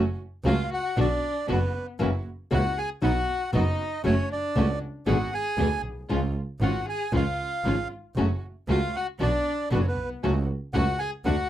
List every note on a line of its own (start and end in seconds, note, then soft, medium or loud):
0.00 0.15 F#1 medium
0.00 0.15 A3 medium
0.00 0.15 C#4 medium
0.00 0.15 F#4 medium
0.44 0.67 C#2 loud
0.44 0.54 C#3 medium
0.44 0.54 F#3 loud
0.44 0.67 A3 medium
0.44 0.54 A3 medium
0.44 0.67 C#4 medium
0.44 0.55 C#4 medium
0.44 0.70 F4 medium
0.44 0.67 F#4 loud
0.44 0.55 F#4 medium
0.44 0.70 F5 medium
0.71 0.95 F#4 medium
0.71 0.99 F#5 loud
0.97 1.19 B1 medium
0.97 1.06 B2 medium
0.97 1.06 D3 medium
0.97 1.19 B3 medium
0.97 1.06 B3 medium
0.97 1.19 D4 medium
0.97 1.06 D4 medium
0.97 1.46 D4 medium
0.97 1.19 F#4 medium
0.97 1.07 F#4 loud
0.97 1.47 D5 medium
1.48 1.70 F#1 medium
1.48 1.57 B2 medium
1.48 1.58 D3 medium
1.48 1.58 B3 medium
1.48 1.70 B3 medium
1.48 1.86 B3 medium
1.48 1.70 D4 medium
1.48 1.58 D4 medium
1.48 1.71 F#4 loud
1.48 1.58 F#4 loud
1.52 1.87 B4 medium
1.99 2.22 F#1 medium
1.99 2.09 C#3 loud
1.99 2.09 E3 loud
1.99 2.09 A#3 loud
1.99 2.22 A#3 medium
1.99 2.09 C#4 loud
1.99 2.22 E4 medium
1.99 2.09 F#4 loud
1.99 2.22 F#4 medium
2.51 2.73 C#2 loud
2.51 2.60 C#3 loud
2.51 2.60 E3 medium
2.51 2.60 A#3 loud
2.51 2.73 A#3 medium
2.51 2.60 C#4 loud
2.51 2.73 E4 medium
2.51 2.60 F#4 medium
2.51 2.73 F#4 loud
2.51 2.76 F#4 medium
2.51 2.79 F#5 loud
2.78 2.89 G#4 medium
2.78 2.90 G#5 loud
3.02 3.24 B1 loud
3.02 3.11 B2 medium
3.02 3.11 F#3 loud
3.02 3.11 B3 loud
3.02 3.25 B3 medium
3.02 3.11 D#4 loud
3.02 3.25 D#4 medium
3.02 3.12 F#4 loud
3.02 3.51 F#4 medium
3.02 3.25 F#4 medium
3.02 3.51 F#5 loud
3.53 3.75 F#1 loud
3.53 3.62 B2 medium
3.53 3.62 F#3 medium
3.53 3.62 B3 loud
3.53 3.76 B3 medium
3.53 3.63 D#4 medium
3.53 3.76 D#4 medium
3.53 4.02 D#4 medium
3.53 3.63 F#4 loud
3.53 3.76 F#4 loud
3.53 4.02 D#5 medium
4.04 4.26 F#1 medium
4.04 4.13 C#3 medium
4.04 4.14 F#3 loud
4.04 4.14 A3 loud
4.04 4.27 A3 medium
4.04 4.14 C#4 medium
4.04 4.29 C#4 medium
4.04 4.27 C#4 medium
4.04 4.14 F#4 loud
4.04 4.27 F#4 medium
4.04 4.29 C#5 loud
4.32 4.79 D4 medium
4.32 4.79 D5 medium
4.55 4.78 C#2 loud
4.55 4.65 C#3 medium
4.55 4.65 F#3 medium
4.55 4.65 A3 loud
4.55 4.78 A3 medium
4.55 4.65 C#4 medium
4.55 4.78 C#4 medium
4.55 4.65 F#4 loud
4.55 4.78 F#4 medium
5.06 5.29 G#1 loud
5.06 5.16 B2 loud
5.06 5.16 D3 loud
5.06 5.16 G#3 loud
5.06 5.16 B3 loud
5.06 5.29 B3 medium
5.06 5.29 D4 medium
5.06 5.32 F#4 medium
5.06 5.16 G#4 loud
5.06 5.29 G#4 loud
5.06 5.34 F#5 medium
5.33 5.81 G#4 medium
5.33 5.82 G#5 loud
5.57 5.80 D2 medium
5.57 5.67 B2 medium
5.57 5.67 D3 medium
5.57 5.67 G#3 medium
5.57 5.68 B3 loud
5.57 5.80 B3 medium
5.57 5.81 D4 medium
5.57 5.68 G#4 loud
5.57 5.81 G#4 medium
5.83 6.08 B1 medium
6.09 6.31 C#2 loud
6.09 6.19 C#3 medium
6.09 6.19 F3 loud
6.09 6.32 G#3 medium
6.09 6.19 G#3 loud
6.09 6.32 C#4 medium
6.09 6.19 C#4 loud
6.09 6.32 F4 medium
6.09 6.19 F4 medium
6.60 6.82 G#1 loud
6.60 6.70 C#3 medium
6.60 6.70 F3 medium
6.60 6.83 G#3 medium
6.60 6.71 G#3 medium
6.60 6.71 C#4 loud
6.60 6.83 C#4 medium
6.60 6.83 F4 medium
6.60 6.71 F4 medium
6.60 6.86 F#4 medium
6.60 6.86 F#5 medium
6.88 7.12 G#4 medium
6.88 7.12 G#5 loud
7.12 7.34 C#2 loud
7.12 7.22 C#3 loud
7.12 7.22 F3 medium
7.12 7.22 G#3 loud
7.12 7.35 G#3 medium
7.12 7.22 C#4 loud
7.12 7.35 C#4 medium
7.12 7.22 F4 medium
7.12 7.35 F4 medium
7.12 7.88 F4 medium
7.12 7.88 F5 medium
7.64 7.86 G#1 medium
7.64 7.74 C#3 medium
7.64 7.74 F3 medium
7.64 7.87 G#3 medium
7.64 7.74 G#3 medium
7.64 7.87 C#4 medium
7.64 7.74 C#4 medium
7.64 7.74 F4 medium
7.64 7.87 F4 medium
8.16 8.38 F#1 medium
8.16 8.26 C#3 loud
8.16 8.26 F#3 loud
8.16 8.39 A3 medium
8.16 8.26 A3 medium
8.16 8.39 C#4 medium
8.16 8.26 C#4 medium
8.16 8.39 F#4 medium
8.16 8.26 F#4 loud
8.68 8.90 C#2 medium
8.68 8.78 C#3 medium
8.68 8.78 F#3 medium
8.68 8.90 A3 medium
8.68 8.78 A3 medium
8.68 8.90 C#4 medium
8.68 8.78 C#4 medium
8.68 8.93 F4 medium
8.68 8.90 F#4 medium
8.68 8.78 F#4 medium
8.68 8.96 F5 medium
8.95 9.07 F#4 medium
8.95 9.07 F#5 loud
9.19 9.41 B1 medium
9.19 9.29 B2 medium
9.19 9.29 D3 loud
9.19 9.41 B3 medium
9.19 9.29 B3 medium
9.19 9.42 D4 medium
9.19 9.29 D4 loud
9.19 9.68 D4 medium
9.19 9.42 F#4 medium
9.19 9.29 F#4 loud
9.19 9.69 D5 loud
9.70 9.93 F#1 loud
9.70 9.80 B2 medium
9.70 9.81 D3 medium
9.70 9.92 B3 medium
9.70 9.81 B3 medium
9.70 9.78 B3 medium
9.70 9.92 D4 medium
9.70 9.81 D4 medium
9.70 9.93 F#4 medium
9.70 9.81 F#4 medium
9.70 9.79 B4 medium
9.78 9.85 C#4 medium
9.78 9.86 C#5 medium
9.86 10.09 B3 medium
9.86 10.10 B4 medium
9.97 10.22 B1 medium
10.23 10.44 C#2 loud
10.23 10.32 C#3 medium
10.23 10.32 F#3 loud
10.23 10.44 A3 medium
10.23 10.32 A3 medium
10.23 10.44 C#4 medium
10.23 10.32 C#4 loud
10.23 10.45 F#4 medium
10.23 10.32 F#4 loud
10.73 10.95 C#2 loud
10.73 10.83 C#3 loud
10.73 10.83 F#3 medium
10.73 10.95 A3 medium
10.73 10.83 A3 medium
10.73 10.96 C#4 medium
10.73 10.83 C#4 medium
10.73 10.96 F#4 loud
10.73 10.98 F#4 medium
10.73 10.83 F#4 loud
10.73 11.00 F#5 loud
10.99 11.11 G#4 medium
10.99 11.11 G#5 loud
11.25 11.46 D2 loud
11.25 11.34 D3 medium
11.25 11.46 A3 medium
11.25 11.34 A3 medium
11.25 11.47 D4 medium
11.25 11.34 D4 loud
11.25 11.47 F#4 medium
11.25 11.49 F#4 medium
11.25 11.34 F#4 loud
11.25 11.49 F#5 loud